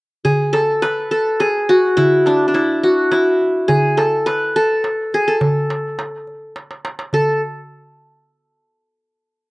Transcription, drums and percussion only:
0.25 darbuka dum medium
0.54 darbuka tek medium
0.82 darbuka tek medium
1.40 darbuka tek medium
1.69 darbuka ka soft
1.98 darbuka dum medium
2.26 darbuka tek soft
2.55 darbuka tek medium
3.12 darbuka tek medium
3.41 darbuka ka soft
3.69 darbuka dum medium
3.98 darbuka tek medium
4.27 darbuka tek medium
4.84 darbuka tek medium
5.13 darbuka ka soft
5.41 darbuka dum medium
5.70 darbuka tek medium
5.99 darbuka tek medium
6.27 darbuka ka soft
6.56 darbuka tek soft
6.71 darbuka ka medium
6.85 darbuka tek medium
6.99 darbuka ka medium
7.13 darbuka dum medium

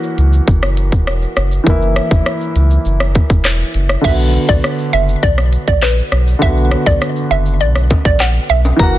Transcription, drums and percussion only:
0.03 shaker medium
0.18 closed hi-hat medium
0.18 shaker soft
0.33 shaker medium
0.48 kick medium
0.48 shaker medium
0.63 cross-stick medium
0.63 shaker soft
0.77 closed hi-hat medium
0.77 shaker medium
0.92 kick medium
0.92 shaker medium
1.07 cross-stick loud
1.07 shaker medium
1.22 shaker medium
1.37 cross-stick medium
1.37 closed hi-hat medium
1.37 shaker medium
1.52 shaker medium
1.67 kick loud
1.67 shaker medium
1.82 shaker soft
1.96 cross-stick loud
1.96 closed hi-hat medium
1.96 shaker medium
2.11 kick medium
2.11 shaker medium
2.26 cross-stick medium
2.26 shaker medium
2.41 shaker medium
2.56 closed hi-hat medium
2.56 shaker soft
2.71 shaker medium
2.85 shaker medium
3.00 cross-stick medium
3.00 shaker medium
3.15 kick medium
3.15 closed hi-hat medium
3.15 shaker medium
3.30 kick medium
3.30 shaker medium
3.45 cross-stick medium
3.45 clap medium
3.45 shaker medium
3.60 shaker medium
3.74 closed hi-hat medium
3.74 shaker medium
3.89 cross-stick loud
3.89 shaker medium
4.04 kick loud
4.04 crash loud
4.04 shaker medium
4.19 shaker medium
4.19 shaker soft
4.34 closed hi-hat medium
4.34 shaker medium
4.49 kick medium
4.49 shaker medium
4.64 cross-stick medium
4.64 shaker medium
4.79 shaker medium
4.93 closed hi-hat medium
4.93 shaker medium
5.08 shaker medium
5.23 kick medium
5.23 shaker medium
5.38 cross-stick medium
5.38 shaker medium
5.53 closed hi-hat medium
5.53 shaker medium
5.53 shaker soft
5.68 kick medium
5.68 shaker medium
5.83 cross-stick loud
5.83 clap loud
5.83 shaker medium
5.97 shaker medium
6.12 cross-stick medium
6.12 closed hi-hat medium
6.12 shaker medium
6.27 shaker medium
6.42 kick loud
6.42 shaker medium
6.57 shaker medium
6.57 shaker soft
6.71 cross-stick loud
6.71 closed hi-hat medium
6.71 shaker medium
6.86 kick medium
6.86 shaker medium
7.01 cross-stick medium
7.01 shaker medium
7.16 shaker medium
7.16 shaker soft
7.31 closed hi-hat medium
7.31 shaker medium
7.31 shaker soft
7.46 shaker medium
7.60 shaker medium
7.75 cross-stick medium
7.75 shaker medium
7.75 shaker soft
7.90 kick medium
7.90 closed hi-hat medium
7.90 high timbale medium
7.90 shaker medium
7.90 shaker soft
8.05 kick loud
8.05 shaker medium
8.20 cross-stick loud
8.20 clap loud
8.20 shaker medium
8.35 shaker medium
8.50 closed hi-hat medium
8.50 shaker medium
8.65 high timbale medium
8.65 shaker medium
8.79 kick loud
8.79 shaker medium
8.94 shaker soft
8.94 shaker medium

